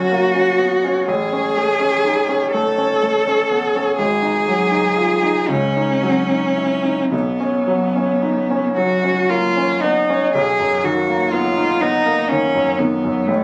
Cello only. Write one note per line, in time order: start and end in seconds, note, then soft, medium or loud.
0.00 1.10 F#4 medium
1.08 2.52 G#4 medium
2.52 3.96 A4 medium
3.99 5.50 G#4 medium
5.49 7.12 C#4 medium
7.13 8.73 B3 soft
8.77 9.32 F#4 medium
9.30 9.83 F4 medium
9.81 10.33 D#4 medium
10.34 10.86 G#4 medium
10.85 11.34 F#4 medium
11.33 11.83 F4 medium
11.82 12.31 D#4 medium
12.30 12.80 C#4 medium
12.79 13.29 B3 medium
13.27 13.44 A3 medium